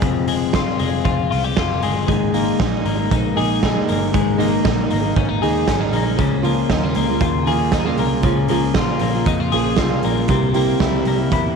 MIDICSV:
0, 0, Header, 1, 5, 480
1, 0, Start_track
1, 0, Key_signature, -4, "major"
1, 0, Tempo, 513259
1, 24, Time_signature, 4, 2, 24, 8
1, 10808, End_track
2, 0, Start_track
2, 0, Title_t, "Clean electric guitar"
2, 0, Program_c, 0, 27
2, 0, Note_on_c, 0, 56, 60
2, 0, Note_on_c, 0, 65, 57
2, 0, Note_on_c, 0, 67, 65
2, 25, Note_on_c, 0, 41, 73
2, 257, Note_off_c, 0, 56, 0
2, 261, Note_on_c, 0, 56, 56
2, 499, Note_off_c, 0, 65, 0
2, 511, Note_on_c, 0, 65, 55
2, 740, Note_off_c, 0, 56, 0
2, 744, Note_on_c, 0, 56, 57
2, 967, Note_off_c, 0, 65, 0
2, 978, Note_on_c, 0, 65, 56
2, 1213, Note_off_c, 0, 65, 0
2, 1220, Note_off_c, 0, 67, 0
2, 1224, Note_on_c, 0, 65, 64
2, 1349, Note_off_c, 0, 65, 0
2, 1349, Note_on_c, 0, 67, 50
2, 1471, Note_on_c, 0, 65, 61
2, 1707, Note_off_c, 0, 56, 0
2, 1711, Note_on_c, 0, 56, 57
2, 1947, Note_off_c, 0, 56, 0
2, 1947, Note_on_c, 0, 56, 74
2, 1948, Note_off_c, 0, 41, 0
2, 1997, Note_off_c, 0, 65, 0
2, 1997, Note_off_c, 0, 67, 0
2, 2188, Note_on_c, 0, 58, 58
2, 2433, Note_on_c, 0, 63, 58
2, 2670, Note_off_c, 0, 58, 0
2, 2673, Note_on_c, 0, 58, 57
2, 2904, Note_off_c, 0, 63, 0
2, 2915, Note_on_c, 0, 63, 52
2, 3151, Note_on_c, 0, 68, 67
2, 3388, Note_off_c, 0, 63, 0
2, 3399, Note_on_c, 0, 63, 59
2, 3634, Note_off_c, 0, 58, 0
2, 3638, Note_on_c, 0, 58, 54
2, 3872, Note_off_c, 0, 56, 0
2, 3876, Note_on_c, 0, 56, 74
2, 4110, Note_off_c, 0, 58, 0
2, 4113, Note_on_c, 0, 58, 55
2, 4340, Note_off_c, 0, 63, 0
2, 4351, Note_on_c, 0, 63, 63
2, 4586, Note_off_c, 0, 58, 0
2, 4590, Note_on_c, 0, 58, 52
2, 4828, Note_off_c, 0, 63, 0
2, 4831, Note_on_c, 0, 61, 57
2, 4945, Note_off_c, 0, 61, 0
2, 4945, Note_on_c, 0, 63, 55
2, 5066, Note_off_c, 0, 68, 0
2, 5070, Note_on_c, 0, 68, 64
2, 5301, Note_off_c, 0, 63, 0
2, 5305, Note_on_c, 0, 61, 59
2, 5431, Note_off_c, 0, 61, 0
2, 5431, Note_on_c, 0, 63, 50
2, 5545, Note_off_c, 0, 58, 0
2, 5549, Note_on_c, 0, 58, 56
2, 5791, Note_on_c, 0, 49, 77
2, 5836, Note_off_c, 0, 63, 0
2, 6027, Note_off_c, 0, 58, 0
2, 6031, Note_on_c, 0, 58, 59
2, 6059, Note_off_c, 0, 56, 0
2, 6059, Note_off_c, 0, 68, 0
2, 6271, Note_on_c, 0, 63, 62
2, 6393, Note_off_c, 0, 63, 0
2, 6393, Note_on_c, 0, 65, 51
2, 6506, Note_off_c, 0, 58, 0
2, 6510, Note_on_c, 0, 58, 55
2, 6731, Note_off_c, 0, 65, 0
2, 6742, Note_on_c, 0, 65, 58
2, 6988, Note_on_c, 0, 68, 65
2, 7223, Note_off_c, 0, 65, 0
2, 7231, Note_on_c, 0, 63, 58
2, 7346, Note_off_c, 0, 63, 0
2, 7346, Note_on_c, 0, 65, 51
2, 7468, Note_off_c, 0, 58, 0
2, 7471, Note_on_c, 0, 58, 59
2, 7698, Note_off_c, 0, 49, 0
2, 7709, Note_on_c, 0, 49, 76
2, 7939, Note_off_c, 0, 58, 0
2, 7943, Note_on_c, 0, 58, 55
2, 8176, Note_off_c, 0, 65, 0
2, 8187, Note_on_c, 0, 65, 57
2, 8426, Note_off_c, 0, 58, 0
2, 8430, Note_on_c, 0, 58, 54
2, 8665, Note_off_c, 0, 65, 0
2, 8670, Note_on_c, 0, 63, 59
2, 8791, Note_off_c, 0, 63, 0
2, 8791, Note_on_c, 0, 65, 54
2, 8892, Note_off_c, 0, 68, 0
2, 8903, Note_on_c, 0, 68, 62
2, 9134, Note_off_c, 0, 65, 0
2, 9145, Note_on_c, 0, 65, 59
2, 9391, Note_off_c, 0, 58, 0
2, 9395, Note_on_c, 0, 58, 55
2, 9625, Note_off_c, 0, 49, 0
2, 9630, Note_on_c, 0, 48, 73
2, 9670, Note_off_c, 0, 68, 0
2, 9671, Note_off_c, 0, 65, 0
2, 9870, Note_off_c, 0, 58, 0
2, 9874, Note_on_c, 0, 58, 59
2, 10112, Note_on_c, 0, 64, 58
2, 10344, Note_off_c, 0, 58, 0
2, 10355, Note_on_c, 0, 58, 54
2, 10579, Note_off_c, 0, 64, 0
2, 10590, Note_on_c, 0, 64, 58
2, 10808, Note_off_c, 0, 48, 0
2, 10808, Note_off_c, 0, 58, 0
2, 10808, Note_off_c, 0, 64, 0
2, 10808, End_track
3, 0, Start_track
3, 0, Title_t, "Steel-string acoustic guitar"
3, 0, Program_c, 1, 25
3, 1930, Note_on_c, 1, 56, 67
3, 1940, Note_on_c, 1, 58, 67
3, 1945, Note_on_c, 1, 63, 60
3, 1957, Note_on_c, 1, 68, 69
3, 2164, Note_off_c, 1, 56, 0
3, 2173, Note_off_c, 1, 58, 0
3, 2176, Note_off_c, 1, 63, 0
3, 2176, Note_on_c, 1, 56, 73
3, 2184, Note_off_c, 1, 68, 0
3, 2185, Note_on_c, 1, 58, 86
3, 2188, Note_on_c, 1, 63, 88
3, 2195, Note_on_c, 1, 68, 87
3, 2776, Note_off_c, 1, 68, 0
3, 2780, Note_on_c, 1, 68, 51
3, 2788, Note_off_c, 1, 63, 0
3, 2799, Note_on_c, 1, 63, 50
3, 2808, Note_off_c, 1, 58, 0
3, 2812, Note_on_c, 1, 58, 41
3, 2840, Note_off_c, 1, 56, 0
3, 3132, Note_on_c, 1, 56, 74
3, 3134, Note_off_c, 1, 58, 0
3, 3136, Note_off_c, 1, 63, 0
3, 3144, Note_off_c, 1, 68, 0
3, 3146, Note_on_c, 1, 58, 86
3, 3148, Note_on_c, 1, 63, 76
3, 3153, Note_on_c, 1, 68, 89
3, 3487, Note_off_c, 1, 68, 0
3, 3493, Note_off_c, 1, 63, 0
3, 3498, Note_off_c, 1, 58, 0
3, 3498, Note_on_c, 1, 68, 73
3, 3500, Note_off_c, 1, 56, 0
3, 3504, Note_on_c, 1, 63, 65
3, 3509, Note_on_c, 1, 58, 53
3, 3518, Note_on_c, 1, 56, 54
3, 3840, Note_off_c, 1, 56, 0
3, 3848, Note_off_c, 1, 58, 0
3, 3851, Note_on_c, 1, 56, 62
3, 3855, Note_off_c, 1, 63, 0
3, 3859, Note_on_c, 1, 58, 62
3, 3863, Note_off_c, 1, 68, 0
3, 3866, Note_on_c, 1, 63, 69
3, 3876, Note_on_c, 1, 68, 66
3, 4080, Note_off_c, 1, 56, 0
3, 4089, Note_off_c, 1, 58, 0
3, 4091, Note_on_c, 1, 56, 78
3, 4092, Note_off_c, 1, 63, 0
3, 4099, Note_off_c, 1, 68, 0
3, 4100, Note_on_c, 1, 58, 85
3, 4104, Note_on_c, 1, 63, 80
3, 4110, Note_on_c, 1, 68, 96
3, 4689, Note_off_c, 1, 68, 0
3, 4693, Note_on_c, 1, 68, 55
3, 4701, Note_off_c, 1, 63, 0
3, 4712, Note_on_c, 1, 63, 47
3, 4717, Note_off_c, 1, 58, 0
3, 4721, Note_on_c, 1, 58, 44
3, 4749, Note_off_c, 1, 56, 0
3, 5060, Note_off_c, 1, 68, 0
3, 5061, Note_off_c, 1, 58, 0
3, 5064, Note_on_c, 1, 56, 77
3, 5069, Note_off_c, 1, 63, 0
3, 5072, Note_on_c, 1, 58, 74
3, 5081, Note_on_c, 1, 63, 84
3, 5085, Note_on_c, 1, 68, 85
3, 5402, Note_off_c, 1, 68, 0
3, 5410, Note_off_c, 1, 63, 0
3, 5413, Note_on_c, 1, 68, 67
3, 5416, Note_off_c, 1, 58, 0
3, 5421, Note_on_c, 1, 63, 63
3, 5422, Note_off_c, 1, 56, 0
3, 5427, Note_on_c, 1, 58, 56
3, 5433, Note_on_c, 1, 56, 60
3, 5764, Note_off_c, 1, 56, 0
3, 5768, Note_on_c, 1, 53, 69
3, 5770, Note_off_c, 1, 58, 0
3, 5780, Note_off_c, 1, 68, 0
3, 5781, Note_on_c, 1, 58, 64
3, 5783, Note_off_c, 1, 63, 0
3, 5788, Note_on_c, 1, 65, 66
3, 5794, Note_on_c, 1, 68, 73
3, 5995, Note_off_c, 1, 53, 0
3, 6001, Note_off_c, 1, 58, 0
3, 6001, Note_on_c, 1, 49, 78
3, 6005, Note_off_c, 1, 65, 0
3, 6007, Note_on_c, 1, 53, 83
3, 6009, Note_off_c, 1, 68, 0
3, 6012, Note_on_c, 1, 58, 85
3, 6017, Note_on_c, 1, 65, 85
3, 6021, Note_on_c, 1, 68, 82
3, 6611, Note_off_c, 1, 68, 0
3, 6613, Note_off_c, 1, 49, 0
3, 6616, Note_off_c, 1, 53, 0
3, 6621, Note_off_c, 1, 65, 0
3, 6622, Note_on_c, 1, 68, 61
3, 6635, Note_on_c, 1, 65, 52
3, 6642, Note_off_c, 1, 58, 0
3, 6646, Note_on_c, 1, 58, 42
3, 6971, Note_off_c, 1, 58, 0
3, 6975, Note_on_c, 1, 49, 76
3, 6976, Note_off_c, 1, 65, 0
3, 6980, Note_on_c, 1, 53, 79
3, 6981, Note_off_c, 1, 68, 0
3, 6982, Note_on_c, 1, 58, 83
3, 6987, Note_on_c, 1, 65, 80
3, 6992, Note_on_c, 1, 68, 96
3, 7324, Note_off_c, 1, 68, 0
3, 7329, Note_off_c, 1, 65, 0
3, 7335, Note_off_c, 1, 58, 0
3, 7335, Note_on_c, 1, 68, 71
3, 7336, Note_off_c, 1, 53, 0
3, 7337, Note_off_c, 1, 49, 0
3, 7340, Note_on_c, 1, 65, 68
3, 7346, Note_on_c, 1, 58, 67
3, 7347, Note_on_c, 1, 53, 59
3, 7348, Note_on_c, 1, 49, 54
3, 7690, Note_off_c, 1, 53, 0
3, 7695, Note_off_c, 1, 58, 0
3, 7699, Note_off_c, 1, 68, 0
3, 7701, Note_on_c, 1, 53, 62
3, 7702, Note_off_c, 1, 65, 0
3, 7706, Note_off_c, 1, 49, 0
3, 7706, Note_on_c, 1, 58, 65
3, 7721, Note_on_c, 1, 65, 76
3, 7725, Note_on_c, 1, 68, 68
3, 7931, Note_off_c, 1, 53, 0
3, 7938, Note_off_c, 1, 58, 0
3, 7940, Note_on_c, 1, 49, 82
3, 7942, Note_on_c, 1, 53, 80
3, 7944, Note_off_c, 1, 68, 0
3, 7948, Note_off_c, 1, 65, 0
3, 7949, Note_on_c, 1, 58, 77
3, 7955, Note_on_c, 1, 68, 89
3, 7959, Note_on_c, 1, 65, 84
3, 8530, Note_off_c, 1, 68, 0
3, 8541, Note_off_c, 1, 49, 0
3, 8541, Note_on_c, 1, 68, 52
3, 8542, Note_off_c, 1, 53, 0
3, 8548, Note_off_c, 1, 65, 0
3, 8560, Note_on_c, 1, 65, 50
3, 8569, Note_off_c, 1, 58, 0
3, 8573, Note_on_c, 1, 58, 44
3, 8901, Note_off_c, 1, 58, 0
3, 8902, Note_off_c, 1, 68, 0
3, 8904, Note_on_c, 1, 49, 70
3, 8906, Note_on_c, 1, 53, 78
3, 8907, Note_off_c, 1, 65, 0
3, 8912, Note_on_c, 1, 58, 79
3, 8919, Note_on_c, 1, 65, 86
3, 8924, Note_on_c, 1, 68, 89
3, 9238, Note_off_c, 1, 68, 0
3, 9242, Note_off_c, 1, 65, 0
3, 9249, Note_off_c, 1, 58, 0
3, 9250, Note_on_c, 1, 68, 67
3, 9254, Note_on_c, 1, 65, 60
3, 9255, Note_off_c, 1, 53, 0
3, 9258, Note_off_c, 1, 49, 0
3, 9261, Note_on_c, 1, 58, 59
3, 9266, Note_on_c, 1, 53, 54
3, 9269, Note_on_c, 1, 49, 54
3, 9600, Note_off_c, 1, 53, 0
3, 9604, Note_on_c, 1, 55, 62
3, 9607, Note_off_c, 1, 58, 0
3, 9616, Note_off_c, 1, 68, 0
3, 9618, Note_off_c, 1, 65, 0
3, 9618, Note_on_c, 1, 58, 63
3, 9625, Note_off_c, 1, 49, 0
3, 9627, Note_on_c, 1, 64, 63
3, 9635, Note_on_c, 1, 67, 73
3, 9842, Note_off_c, 1, 55, 0
3, 9842, Note_off_c, 1, 58, 0
3, 9846, Note_on_c, 1, 48, 74
3, 9850, Note_off_c, 1, 64, 0
3, 9852, Note_off_c, 1, 67, 0
3, 9853, Note_on_c, 1, 55, 79
3, 9853, Note_on_c, 1, 58, 79
3, 9861, Note_on_c, 1, 64, 86
3, 9863, Note_on_c, 1, 67, 84
3, 10451, Note_off_c, 1, 67, 0
3, 10454, Note_off_c, 1, 48, 0
3, 10454, Note_off_c, 1, 64, 0
3, 10455, Note_on_c, 1, 67, 52
3, 10457, Note_off_c, 1, 58, 0
3, 10465, Note_on_c, 1, 64, 49
3, 10479, Note_on_c, 1, 58, 40
3, 10808, Note_off_c, 1, 55, 0
3, 10808, Note_off_c, 1, 58, 0
3, 10808, Note_off_c, 1, 64, 0
3, 10808, Note_off_c, 1, 67, 0
3, 10808, End_track
4, 0, Start_track
4, 0, Title_t, "Picked electric bass"
4, 0, Program_c, 2, 34
4, 22, Note_on_c, 2, 29, 86
4, 502, Note_off_c, 2, 29, 0
4, 502, Note_on_c, 2, 31, 86
4, 708, Note_off_c, 2, 31, 0
4, 747, Note_on_c, 2, 29, 82
4, 951, Note_off_c, 2, 29, 0
4, 986, Note_on_c, 2, 29, 89
4, 1191, Note_off_c, 2, 29, 0
4, 1235, Note_on_c, 2, 36, 78
4, 1436, Note_off_c, 2, 36, 0
4, 1470, Note_on_c, 2, 29, 82
4, 1711, Note_off_c, 2, 29, 0
4, 1711, Note_on_c, 2, 31, 80
4, 1914, Note_off_c, 2, 31, 0
4, 1951, Note_on_c, 2, 32, 92
4, 2358, Note_off_c, 2, 32, 0
4, 2432, Note_on_c, 2, 34, 84
4, 2634, Note_off_c, 2, 34, 0
4, 2671, Note_on_c, 2, 32, 80
4, 2874, Note_off_c, 2, 32, 0
4, 2914, Note_on_c, 2, 34, 89
4, 3115, Note_off_c, 2, 34, 0
4, 3162, Note_on_c, 2, 34, 76
4, 3564, Note_off_c, 2, 34, 0
4, 3648, Note_on_c, 2, 31, 79
4, 3843, Note_off_c, 2, 31, 0
4, 3877, Note_on_c, 2, 32, 90
4, 4281, Note_off_c, 2, 32, 0
4, 4351, Note_on_c, 2, 34, 83
4, 4553, Note_off_c, 2, 34, 0
4, 4600, Note_on_c, 2, 32, 84
4, 4799, Note_off_c, 2, 32, 0
4, 4831, Note_on_c, 2, 32, 89
4, 5033, Note_off_c, 2, 32, 0
4, 5079, Note_on_c, 2, 39, 79
4, 5278, Note_off_c, 2, 39, 0
4, 5307, Note_on_c, 2, 32, 84
4, 5511, Note_off_c, 2, 32, 0
4, 5541, Note_on_c, 2, 34, 89
4, 5747, Note_off_c, 2, 34, 0
4, 5790, Note_on_c, 2, 37, 98
4, 6196, Note_off_c, 2, 37, 0
4, 6264, Note_on_c, 2, 39, 86
4, 6468, Note_off_c, 2, 39, 0
4, 6504, Note_on_c, 2, 37, 81
4, 6709, Note_off_c, 2, 37, 0
4, 6745, Note_on_c, 2, 39, 92
4, 6949, Note_off_c, 2, 39, 0
4, 6984, Note_on_c, 2, 39, 92
4, 7392, Note_off_c, 2, 39, 0
4, 7472, Note_on_c, 2, 36, 74
4, 7673, Note_off_c, 2, 36, 0
4, 7705, Note_on_c, 2, 37, 93
4, 7908, Note_off_c, 2, 37, 0
4, 7949, Note_on_c, 2, 37, 84
4, 8184, Note_off_c, 2, 37, 0
4, 8184, Note_on_c, 2, 34, 81
4, 8388, Note_off_c, 2, 34, 0
4, 8434, Note_on_c, 2, 34, 82
4, 8633, Note_off_c, 2, 34, 0
4, 8664, Note_on_c, 2, 41, 96
4, 8868, Note_off_c, 2, 41, 0
4, 8912, Note_on_c, 2, 34, 78
4, 9112, Note_off_c, 2, 34, 0
4, 9144, Note_on_c, 2, 36, 79
4, 9347, Note_off_c, 2, 36, 0
4, 9398, Note_on_c, 2, 34, 75
4, 9595, Note_off_c, 2, 34, 0
4, 9628, Note_on_c, 2, 36, 92
4, 10033, Note_off_c, 2, 36, 0
4, 10104, Note_on_c, 2, 37, 77
4, 10307, Note_off_c, 2, 37, 0
4, 10339, Note_on_c, 2, 36, 85
4, 10585, Note_off_c, 2, 36, 0
4, 10585, Note_on_c, 2, 40, 88
4, 10788, Note_off_c, 2, 40, 0
4, 10808, End_track
5, 0, Start_track
5, 0, Title_t, "Drums"
5, 14, Note_on_c, 9, 42, 58
5, 19, Note_on_c, 9, 36, 97
5, 108, Note_off_c, 9, 42, 0
5, 113, Note_off_c, 9, 36, 0
5, 257, Note_on_c, 9, 46, 66
5, 351, Note_off_c, 9, 46, 0
5, 499, Note_on_c, 9, 38, 84
5, 501, Note_on_c, 9, 42, 60
5, 502, Note_on_c, 9, 36, 94
5, 592, Note_off_c, 9, 38, 0
5, 594, Note_off_c, 9, 42, 0
5, 596, Note_off_c, 9, 36, 0
5, 741, Note_on_c, 9, 46, 62
5, 835, Note_off_c, 9, 46, 0
5, 984, Note_on_c, 9, 36, 97
5, 984, Note_on_c, 9, 42, 67
5, 1077, Note_off_c, 9, 42, 0
5, 1078, Note_off_c, 9, 36, 0
5, 1234, Note_on_c, 9, 46, 70
5, 1328, Note_off_c, 9, 46, 0
5, 1465, Note_on_c, 9, 38, 102
5, 1465, Note_on_c, 9, 42, 66
5, 1469, Note_on_c, 9, 36, 113
5, 1558, Note_off_c, 9, 38, 0
5, 1559, Note_off_c, 9, 42, 0
5, 1562, Note_off_c, 9, 36, 0
5, 1706, Note_on_c, 9, 46, 60
5, 1799, Note_off_c, 9, 46, 0
5, 1949, Note_on_c, 9, 36, 95
5, 1950, Note_on_c, 9, 42, 61
5, 2042, Note_off_c, 9, 36, 0
5, 2044, Note_off_c, 9, 42, 0
5, 2189, Note_on_c, 9, 46, 66
5, 2282, Note_off_c, 9, 46, 0
5, 2430, Note_on_c, 9, 36, 104
5, 2430, Note_on_c, 9, 38, 85
5, 2432, Note_on_c, 9, 42, 61
5, 2523, Note_off_c, 9, 36, 0
5, 2524, Note_off_c, 9, 38, 0
5, 2526, Note_off_c, 9, 42, 0
5, 2669, Note_on_c, 9, 46, 56
5, 2762, Note_off_c, 9, 46, 0
5, 2912, Note_on_c, 9, 36, 101
5, 2914, Note_on_c, 9, 42, 69
5, 3006, Note_off_c, 9, 36, 0
5, 3008, Note_off_c, 9, 42, 0
5, 3160, Note_on_c, 9, 46, 70
5, 3254, Note_off_c, 9, 46, 0
5, 3393, Note_on_c, 9, 38, 101
5, 3394, Note_on_c, 9, 42, 65
5, 3395, Note_on_c, 9, 36, 109
5, 3487, Note_off_c, 9, 38, 0
5, 3487, Note_off_c, 9, 42, 0
5, 3488, Note_off_c, 9, 36, 0
5, 3633, Note_on_c, 9, 46, 65
5, 3727, Note_off_c, 9, 46, 0
5, 3874, Note_on_c, 9, 36, 100
5, 3877, Note_on_c, 9, 42, 62
5, 3968, Note_off_c, 9, 36, 0
5, 3971, Note_off_c, 9, 42, 0
5, 4116, Note_on_c, 9, 46, 68
5, 4210, Note_off_c, 9, 46, 0
5, 4346, Note_on_c, 9, 38, 88
5, 4349, Note_on_c, 9, 36, 107
5, 4349, Note_on_c, 9, 42, 63
5, 4440, Note_off_c, 9, 38, 0
5, 4442, Note_off_c, 9, 42, 0
5, 4443, Note_off_c, 9, 36, 0
5, 4587, Note_on_c, 9, 46, 60
5, 4680, Note_off_c, 9, 46, 0
5, 4830, Note_on_c, 9, 36, 104
5, 4832, Note_on_c, 9, 42, 65
5, 4923, Note_off_c, 9, 36, 0
5, 4925, Note_off_c, 9, 42, 0
5, 5076, Note_on_c, 9, 46, 77
5, 5170, Note_off_c, 9, 46, 0
5, 5308, Note_on_c, 9, 38, 105
5, 5309, Note_on_c, 9, 42, 65
5, 5310, Note_on_c, 9, 36, 110
5, 5402, Note_off_c, 9, 38, 0
5, 5402, Note_off_c, 9, 42, 0
5, 5403, Note_off_c, 9, 36, 0
5, 5545, Note_on_c, 9, 46, 60
5, 5638, Note_off_c, 9, 46, 0
5, 5784, Note_on_c, 9, 42, 63
5, 5787, Note_on_c, 9, 36, 93
5, 5878, Note_off_c, 9, 42, 0
5, 5880, Note_off_c, 9, 36, 0
5, 6027, Note_on_c, 9, 46, 64
5, 6121, Note_off_c, 9, 46, 0
5, 6262, Note_on_c, 9, 38, 93
5, 6265, Note_on_c, 9, 36, 99
5, 6265, Note_on_c, 9, 42, 64
5, 6356, Note_off_c, 9, 38, 0
5, 6358, Note_off_c, 9, 36, 0
5, 6358, Note_off_c, 9, 42, 0
5, 6496, Note_on_c, 9, 46, 58
5, 6590, Note_off_c, 9, 46, 0
5, 6739, Note_on_c, 9, 42, 69
5, 6741, Note_on_c, 9, 36, 108
5, 6832, Note_off_c, 9, 42, 0
5, 6835, Note_off_c, 9, 36, 0
5, 6986, Note_on_c, 9, 46, 75
5, 7079, Note_off_c, 9, 46, 0
5, 7218, Note_on_c, 9, 38, 103
5, 7219, Note_on_c, 9, 42, 67
5, 7224, Note_on_c, 9, 36, 106
5, 7312, Note_off_c, 9, 38, 0
5, 7312, Note_off_c, 9, 42, 0
5, 7318, Note_off_c, 9, 36, 0
5, 7458, Note_on_c, 9, 46, 61
5, 7552, Note_off_c, 9, 46, 0
5, 7695, Note_on_c, 9, 42, 62
5, 7701, Note_on_c, 9, 36, 104
5, 7789, Note_off_c, 9, 42, 0
5, 7794, Note_off_c, 9, 36, 0
5, 7933, Note_on_c, 9, 46, 64
5, 8026, Note_off_c, 9, 46, 0
5, 8177, Note_on_c, 9, 38, 87
5, 8179, Note_on_c, 9, 42, 61
5, 8181, Note_on_c, 9, 36, 104
5, 8271, Note_off_c, 9, 38, 0
5, 8273, Note_off_c, 9, 42, 0
5, 8275, Note_off_c, 9, 36, 0
5, 8411, Note_on_c, 9, 46, 64
5, 8505, Note_off_c, 9, 46, 0
5, 8660, Note_on_c, 9, 42, 67
5, 8662, Note_on_c, 9, 36, 106
5, 8754, Note_off_c, 9, 42, 0
5, 8756, Note_off_c, 9, 36, 0
5, 8903, Note_on_c, 9, 46, 73
5, 8997, Note_off_c, 9, 46, 0
5, 9133, Note_on_c, 9, 38, 107
5, 9133, Note_on_c, 9, 42, 70
5, 9144, Note_on_c, 9, 36, 103
5, 9226, Note_off_c, 9, 38, 0
5, 9227, Note_off_c, 9, 42, 0
5, 9237, Note_off_c, 9, 36, 0
5, 9378, Note_on_c, 9, 46, 64
5, 9471, Note_off_c, 9, 46, 0
5, 9614, Note_on_c, 9, 42, 65
5, 9622, Note_on_c, 9, 36, 97
5, 9707, Note_off_c, 9, 42, 0
5, 9716, Note_off_c, 9, 36, 0
5, 9858, Note_on_c, 9, 46, 69
5, 9952, Note_off_c, 9, 46, 0
5, 10103, Note_on_c, 9, 36, 95
5, 10103, Note_on_c, 9, 38, 91
5, 10105, Note_on_c, 9, 42, 62
5, 10196, Note_off_c, 9, 38, 0
5, 10197, Note_off_c, 9, 36, 0
5, 10199, Note_off_c, 9, 42, 0
5, 10335, Note_on_c, 9, 46, 59
5, 10428, Note_off_c, 9, 46, 0
5, 10585, Note_on_c, 9, 36, 107
5, 10588, Note_on_c, 9, 42, 68
5, 10678, Note_off_c, 9, 36, 0
5, 10681, Note_off_c, 9, 42, 0
5, 10808, End_track
0, 0, End_of_file